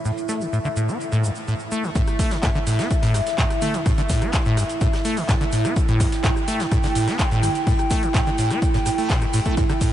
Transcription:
Already playing: analog synth pad E4 E5
0.05 acid bass A2, open hi-hat, shaker
0.17 closed hi-hat, shaker
0.28 acid bass A3, snare, closed hi-hat, shaker
0.41 acid bass D3, shaker
0.53 acid bass A2, closed hi-hat, shaker
0.65 acid bass D3, shaker
0.76 acid bass A2, closed hi-hat, shaker
0.89 acid bass C4, closed hi-hat, shaker
1.00 closed hi-hat, shaker
1.12 acid bass A2, snare, shaker
1.24 acid bass G2, closed hi-hat, shaker
1.35 shaker
1.48 acid bass A2, closed hi-hat, shaker
1.59 shaker
1.72 acid bass A3, closed hi-hat, shaker
1.84 acid bass D3, shaker
1.95 acid bass A2, analog synth pad E4 E5, kick, closed hi-hat, shaker
2.07 cross-stick, closed hi-hat, shaker
2.19 acid bass A3, kick, closed hi-hat, open hi-hat, shaker
2.30 acid bass D3, snare, closed hi-hat, shaker
2.43 acid bass A2, kick, cross-stick, snare, clap, closed hi-hat, shaker
2.55 acid bass D3, shaker
2.67 acid bass A2, closed hi-hat, open hi-hat, shaker
2.79 acid bass C4, cross-stick, snare, closed hi-hat, shaker
2.90 kick, closed hi-hat, shaker
3.02 acid bass A2, snare, open hi-hat, shaker
3.14 acid bass G2, cross-stick, closed hi-hat, open hi-hat, shaker
3.27 snare, closed hi-hat, shaker
3.38 acid bass A2, kick, snare, clap, closed hi-hat, shaker
3.50 cross-stick, closed hi-hat, shaker
3.61 acid bass A3, closed hi-hat, open hi-hat, mid tom, shaker
3.74 acid bass D3, closed hi-hat, shaker
3.86 acid bass A2, kick, cross-stick, closed hi-hat, open hi-hat, shaker
3.98 acid bass D3, closed hi-hat, shaker
4.09 acid bass A2, kick, snare, closed hi-hat, open hi-hat, shaker
4.22 acid bass C4, cross-stick, closed hi-hat, shaker
4.33 kick, snare, clap, closed hi-hat, shaker
4.46 acid bass A2, shaker
4.57 acid bass G2, cross-stick, closed hi-hat, open hi-hat, shaker
4.70 closed hi-hat, shaker
4.81 acid bass A2, kick, closed hi-hat, shaker
4.93 cross-stick, snare, closed hi-hat, shaker
5.05 acid bass A3, closed hi-hat, open hi-hat, shaker
5.17 acid bass D3, open hi-hat, shaker
5.29 acid bass A2, kick, cross-stick, snare, clap, closed hi-hat, shaker
5.41 acid bass D3, closed hi-hat, shaker
5.52 acid bass A2, closed hi-hat, open hi-hat, shaker
5.65 acid bass C4, cross-stick, closed hi-hat, shaker
5.76 analog synth pad G5, kick, closed hi-hat, shaker
5.88 acid bass A2, closed hi-hat, shaker
6.00 acid bass G2, kick, cross-stick, closed hi-hat, open hi-hat, shaker
6.12 snare, closed hi-hat, shaker
6.23 acid bass A2, kick, snare, clap, closed hi-hat, shaker
6.36 cross-stick, shaker
6.47 acid bass A3, closed hi-hat, open hi-hat, shaker
6.59 acid bass D3, snare, closed hi-hat, shaker
6.71 acid bass A2, kick, cross-stick, closed hi-hat, shaker
6.83 acid bass D3, snare, open hi-hat, shaker
6.95 acid bass A2, closed hi-hat, open hi-hat, shaker
7.08 acid bass C4, cross-stick, snare, closed hi-hat, shaker
7.19 kick, snare, clap, closed hi-hat, shaker
7.31 acid bass A2, closed hi-hat, shaker
7.43 acid bass G2, cross-stick, closed hi-hat, open hi-hat, mid tom, shaker
7.55 closed hi-hat, shaker
7.67 acid bass A2, kick, closed hi-hat, open hi-hat, shaker
7.79 cross-stick, closed hi-hat, shaker
7.90 acid bass A3, kick, snare, closed hi-hat, open hi-hat, shaker
8.03 acid bass D3, closed hi-hat, shaker
8.14 acid bass A2, kick, cross-stick, snare, clap, closed hi-hat, shaker
8.26 acid bass D3, shaker
8.38 acid bass A2, closed hi-hat, open hi-hat, shaker
8.50 acid bass C4, cross-stick, closed hi-hat, shaker
8.62 kick, closed hi-hat, shaker
8.74 acid bass A2, snare, closed hi-hat, shaker
8.86 acid bass A2, cross-stick, closed hi-hat, open hi-hat, shaker
8.98 acid bass A3, open hi-hat, shaker
9.09 acid bass A2, kick, snare, clap, closed hi-hat, shaker
9.21 acid bass G2, cross-stick, closed hi-hat, shaker
9.33 acid bass A2, closed hi-hat, open hi-hat, shaker
9.45 acid bass A3, kick, closed hi-hat, shaker
9.57 acid bass A2, analog synth pad E5, kick, closed hi-hat, shaker
9.69 acid bass D3, cross-stick, closed hi-hat, shaker
9.81 acid bass A2, kick, closed hi-hat, open hi-hat, shaker

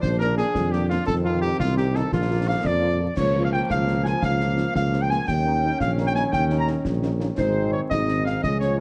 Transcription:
Already playing: trombone section F3 D4
0.01 tuba A#1, woodwind section C5, cornet C5, concert bass drum, snare
0.19 french horn section F3 A#3 D4, woodwind section A#4, cornet A#4, snare
0.37 french horn section F3 A#3 D4, woodwind section G#4, cornet G#4, snare
0.55 tuba F2, concert bass drum, snare
0.71 french horn section F3 A#3 D4, cornet G4, woodwind section G4, snare
0.89 french horn section F3 A#3 D4, cornet F4, woodwind section F4, snare
1.06 tuba F2, trombone section D#3 C4, cornet A4, woodwind section A4, concert bass drum, snare
1.24 french horn section F3 C4 D#4, cornet F4, woodwind section F4
1.41 french horn section F3 C4 D#4, cornet G4, woodwind section G4
1.60 tuba C2, cornet F4, woodwind section F4, concert bass drum, snare
1.76 french horn section F3 C4 D#4, cornet G4, woodwind section G4, snare
1.94 french horn section F3 C4 D#4, cornet A4, woodwind section A4, snare
2.11 tuba A#1, trombone section F3 A#3, woodwind section F4, cornet F4, concert bass drum, snare
2.29 french horn section F3 A#3 F4
2.46 french horn section F3 A#3 F4, woodwind section F5, cornet F5
2.64 tuba F2, woodwind section D5, cornet D5, concert bass drum, snare
2.81 french horn section F3 A#3 F4
2.98 french horn section F3 A#3 F4
3.16 tuba C#2, trombone section F3 A#3, woodwind section C#5, cornet C#5, concert bass drum, snare, crash
3.35 french horn section F3 A#3 F4
3.43 woodwind section F5, cornet F5
3.52 french horn section F3 A#3 F4, cornet G5, woodwind section G5
3.70 tuba C#2, cornet F5, woodwind section F5, concert bass drum, snare
3.87 french horn section F3 A#3 F4, snare
4.04 french horn section F3 A#3 F4, woodwind section G#5, cornet G#5, snare
4.21 tuba C#2, woodwind section F5, cornet F5, concert bass drum, snare
4.40 french horn section F3 A#3 F4, snare
4.57 french horn section F3 A#3 F4, snare
4.75 tuba C#2, woodwind section F5, cornet F5, concert bass drum, snare
4.93 french horn section F3 A#3 F4, snare
5.02 woodwind section G5, cornet G5
5.10 french horn section F3 A#3 F4, woodwind section G#5, cornet G#5, snare
5.28 tuba D#2, trombone section D#3 C#4, cornet G5, woodwind section G5, concert bass drum, snare
5.45 french horn section A#3 C#4 D#4
5.64 french horn section A#3 C#4 D#4
5.80 tuba A#1, cornet F5, woodwind section F5, concert bass drum, snare
5.98 french horn section A#3 C#4 D#4, snare
6.07 cornet G5, woodwind section G5
6.15 french horn section A#3 C#4 D#4, woodwind section G#5, cornet G#5, snare
6.32 tuba D#2, woodwind section G5, cornet G5, concert bass drum, snare
6.50 french horn section A#3 C#4 D#4, snare
6.58 woodwind section A#5, cornet A#5
6.67 french horn section A#3 C#4 D#4, snare
6.85 tuba A#1, concert bass drum, snare
7.03 french horn section A#3 C#4 D#4, snare
7.20 french horn section A#3 C#4 D#4, snare
7.37 tuba G#1, trombone section D#3 C4, french horn section G#3 C4 D#4, woodwind section C5, cornet C5, concert bass drum, snare, crash
7.72 woodwind section C#5, cornet C#5
7.90 tuba G#1, french horn section G#3 C4 D#4, cornet D#5, woodwind section D#5, concert bass drum, snare
8.08 snare
8.25 woodwind section F5, cornet F5, snare
8.42 tuba C#2, trombone section F3 C#4, french horn section G#3 C#4 F4, woodwind section D#5, cornet D#5, concert bass drum, snare
8.60 cornet C#5, woodwind section C#5, snare

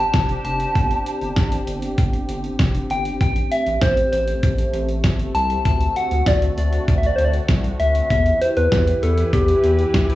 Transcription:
Already playing: analog synth pad C4 D4 G4
0.00 soft synth lead A5
0.14 analog synth bass F1, kick, snare, closed hi-hat
0.30 closed hi-hat
0.45 analog synth bass F1, soft synth lead A5, closed hi-hat
0.60 closed hi-hat
0.76 analog synth bass G1, kick, closed hi-hat
0.91 closed hi-hat
1.06 closed hi-hat
1.21 analog synth bass G1, closed hi-hat
1.36 analog synth bass G1, kick, snare, closed hi-hat
1.52 closed hi-hat
1.68 analog synth bass G1, closed hi-hat
1.82 closed hi-hat
1.98 analog synth bass G1, kick, closed hi-hat
2.13 closed hi-hat
2.29 analog synth bass G1, closed hi-hat
2.44 closed hi-hat
2.59 analog synth bass F1, kick, snare, closed hi-hat
2.75 closed hi-hat
2.90 analog synth bass G1, soft synth lead G5, closed hi-hat
3.05 closed hi-hat
3.20 analog synth bass A1, analog synth pad A3, soft synth lead G5, kick, closed hi-hat
3.36 closed hi-hat
3.51 soft synth lead E5, closed hi-hat
3.66 analog synth bass A1, closed hi-hat
3.81 analog synth bass A1, soft synth lead C5, kick, snare, closed hi-hat
3.97 closed hi-hat
4.12 analog synth bass A1, soft synth lead C5, closed hi-hat
4.27 closed hi-hat
4.43 analog synth bass A1, kick, closed hi-hat
4.58 closed hi-hat
4.73 analog synth bass A1, closed hi-hat
4.89 closed hi-hat
5.04 analog synth bass G1, kick, snare, closed hi-hat
5.20 closed hi-hat
5.35 analog synth bass C2, soft synth lead A5, closed hi-hat
5.50 closed hi-hat
5.65 analog synth bass D2, analog synth pad D3 F#4, soft synth lead A5, kick, closed hi-hat
5.81 closed hi-hat
5.96 soft synth lead F#5, closed hi-hat
6.11 analog synth bass D2, closed hi-hat
6.26 analog synth bass D2, soft synth lead D5, kick, snare, closed hi-hat
6.42 closed hi-hat
6.57 analog synth bass D2, soft synth lead D5, closed hi-hat
6.72 closed hi-hat
6.88 analog synth bass D2, kick, closed hi-hat
6.98 soft synth lead E5
7.03 soft synth lead D5, closed hi-hat
7.16 analog synth bass D2, soft synth lead C5, closed hi-hat
7.25 soft synth lead D5
7.34 closed hi-hat
7.49 analog synth bass C2, kick, snare, closed hi-hat
7.65 closed hi-hat
7.80 analog synth bass D2, soft synth lead E5, closed hi-hat
7.95 closed hi-hat
8.10 analog synth bass E2, analog synth pad E3 E4 G4 B4, soft synth lead E5, kick, closed hi-hat
8.26 closed hi-hat
8.41 soft synth lead C5, closed hi-hat
8.56 analog synth bass E2, soft synth lead B4, closed hi-hat
8.71 analog synth bass E2, kick, snare, closed hi-hat
8.87 closed hi-hat
9.02 analog synth bass E2, soft synth lead A4, closed hi-hat
9.17 closed hi-hat
9.33 analog synth bass E2, soft synth lead G4, kick, closed hi-hat
9.48 closed hi-hat
9.64 analog synth bass E2, closed hi-hat
9.79 closed hi-hat
9.94 analog synth bass D2, kick, snare, closed hi-hat
10.10 closed hi-hat

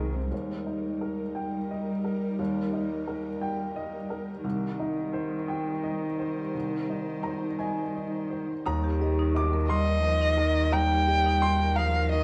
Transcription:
Already playing: upright piano C2 C3 D#4 G#4 A#4 G#5, sub bass C2, cello D#3, ambient pad G#3 D#4 A#4
0.13 cello C3, marimba C5
0.31 upright piano D#2, ambient pad G3 D#4 A#4, cello G3
0.66 upright piano D#4
1.01 upright piano A#4
1.35 upright piano G5
1.71 upright piano D#5
2.04 upright piano A#4
2.39 upright piano D#2
2.73 upright piano D#4
3.08 upright piano A#4
3.41 upright piano G5
3.76 upright piano D#5
4.10 upright piano A#4
4.44 upright piano C2, cello D#3, ambient pad G3 D#4 C5
4.80 upright piano D#4
5.13 upright piano C5
5.48 upright piano G5
5.83 upright piano D#5
6.19 upright piano C5
6.54 upright piano C2
6.90 upright piano D#4
7.23 upright piano C5 A#5
7.59 upright piano D#5 G#5
7.95 upright piano D#5
8.30 upright piano C5
8.65 upright piano D#2 A#5, sub bass D#2, cello D#3, ambient pad G3 D#4 A#4, marimba D#4
8.84 marimba G4
9.00 upright piano G4, marimba D#5
9.19 marimba D#4
9.35 upright piano D#4 D6
9.53 marimba A#4
9.69 cello G3, marimba D#4, upright piano A#4 C6, violin D#5
9.87 marimba A#4
10.02 cello F3, upright piano D#4, marimba A#4
10.21 marimba D#4
10.37 cello D#3, upright piano A#4, marimba D#5
10.56 marimba D#5
10.72 upright piano D#2 A#5, cello G3, marimba D#4, violin G5
10.91 marimba G4
11.07 upright piano G4, marimba D#5
11.26 marimba D#4
11.42 upright piano D#4 C6
11.60 marimba A#4
11.76 cello F3, marimba D#4, upright piano A#4 A#5, violin F5
11.96 marimba A#4
12.12 cello D#3, upright piano D#4, marimba A#4, violin D#5

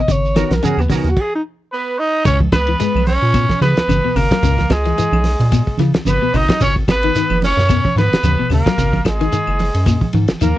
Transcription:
0.00 alto saxophone D#5
0.08 analog synth bass G#1, clean electric guitar C#3, alto saxophone C#5, kick, closed hi-hat, shekere
0.25 shekere
0.36 clean electric guitar D#3 B3 F#4 A#4, snare, closed hi-hat, high conga, claves, shekere
0.50 analog synth bass B1, alto saxophone A#4, snare, closed hi-hat, high conga, shekere
0.63 clean electric guitar C#3 B3 C#4 F#4 A#4, alto saxophone G#4, closed hi-hat, high conga, shekere
0.77 analog synth bass D#2, alto saxophone B3, claves, shekere
0.90 clean electric guitar C#3 B3 C#4 F#4 A#4, alto saxophone D#4, kick, snare, open hi-hat, high conga, low conga, shekere
1.04 analog synth bass D#2, closed hi-hat, shekere
1.09 alto saxophone F#4
1.17 kick, crash
1.21 alto saxophone G#4
1.35 alto saxophone D#4
1.72 tenor saxophone B3, trumpet B4
1.99 tenor saxophone D#4, trumpet D#5
2.25 analog synth bass C#2, clean electric guitar C#3, tenor saxophone C#4, trumpet C#5, kick, ride bell, low conga, shekere
2.40 kick, high conga
2.52 analog synth bass C#2, tenor saxophone B3, trumpet B4, kick, snare, ride bell, high conga, claves, shekere
2.67 clean electric guitar E3, ride bell
2.80 clean electric guitar G#3, snare, ride bell, shekere
2.95 analog synth bass B1, high conga, claves
3.07 tenor saxophone C#4, trumpet C#5, open hi-hat, high conga, shekere
3.22 analog synth bass A#2
3.34 clean electric guitar B2, kick, ride bell, claves, shekere
3.49 kick, snare, high conga
3.61 analog synth bass C#3, clean electric guitar E3, tenor saxophone B3, trumpet B4, snare, ride bell, high conga, shekere
3.76 analog synth bass C#2, snare, ride bell
3.88 analog synth bass G#1, clean electric guitar C#3, ride bell, high conga, claves, shekere
4.04 analog synth bass C#2, clean electric guitar B2
4.15 analog synth bass G#1, clean electric guitar C#3, tenor saxophone A#3, trumpet A#4, open hi-hat, low conga, claves, shekere
4.31 clean electric guitar F#3, kick, snare, ride bell
4.43 analog synth bass C#2, clean electric guitar C#3, kick, ride bell, low conga, shekere
4.58 kick, snare, high conga
4.70 analog synth bass C#2, tenor saxophone G#3, trumpet G#4, kick, snare, ride bell, high conga, claves, shekere
4.85 clean electric guitar E3, snare, ride bell
4.98 clean electric guitar E3, ride bell, shekere
5.12 analog synth bass B1, high conga, claves
5.24 snare, open hi-hat, high conga, shekere
5.40 analog synth bass A#2, ride bell, low conga
5.52 clean electric guitar B2, kick, ride bell, claves, shekere
5.67 kick
5.78 analog synth bass C#3, clean electric guitar E3, snare, ride bell, high conga, shekere
5.94 analog synth bass C#2, snare, ride bell
6.05 analog synth bass G#1, clean electric guitar C#3, tenor saxophone B3, trumpet B4, snare, ride bell, high conga, claves, shekere
6.22 analog synth bass C#2, clean electric guitar B2
6.33 analog synth bass G#1, clean electric guitar C#3, tenor saxophone D#4, trumpet D#5, open hi-hat, low conga, claves, shekere
6.49 clean electric guitar F#3, kick, snare, ride bell
6.61 analog synth bass G#1, clean electric guitar C#3, tenor saxophone C#4, trumpet C#5, kick, ride bell, low conga, shekere
6.76 kick
6.87 analog synth bass G#1, tenor saxophone B3, trumpet B4, kick, snare, ride bell, high conga, claves, shekere
7.03 clean electric guitar D#3, ride bell
7.15 clean electric guitar D#3, snare, ride bell, shekere
7.30 analog synth bass F#1, high conga, claves
7.42 tenor saxophone C#4, trumpet C#5, snare, open hi-hat, high conga, shekere
7.57 analog synth bass F#2, snare, low conga
7.69 clean electric guitar B2, kick, ride bell, claves, shekere
7.85 kick, high conga
7.96 analog synth bass G#2, clean electric guitar D#3, trumpet B4, snare, ride bell, high conga, shekere
8.00 tenor saxophone B3
8.11 analog synth bass G#1, snare, ride bell
8.23 analog synth bass D#2, clean electric guitar C#3, ride bell, high conga, claves, shekere
8.38 analog synth bass G#1, clean electric guitar B2
8.50 analog synth bass D#2, clean electric guitar C#3, open hi-hat, low conga, claves, shekere
8.54 tenor saxophone A#3, trumpet A#4
8.66 clean electric guitar F#3, kick, snare, ride bell
8.78 analog synth bass G#1, clean electric guitar C#3, kick, ride bell, low conga, shekere
8.93 kick, high conga
9.05 analog synth bass G#1, tenor saxophone G#3, trumpet G#4, kick, snare, ride bell, high conga, claves, shekere
9.21 clean electric guitar D#3, snare, ride bell
9.32 clean electric guitar D#3, ride bell, shekere
9.47 analog synth bass F#1, claves
9.59 open hi-hat, high conga, shekere
9.74 analog synth bass F#2, ride bell
9.86 clean electric guitar A#2, kick, ride bell, claves, shekere
10.01 kick, high conga
10.13 analog synth bass G#2, clean electric guitar D#3, ride bell, high conga, shekere
10.28 analog synth bass G#1, snare, ride bell
10.41 analog synth bass D#2, clean electric guitar D#3, tenor saxophone A#3, trumpet A#4, snare, ride bell, high conga, claves, shekere

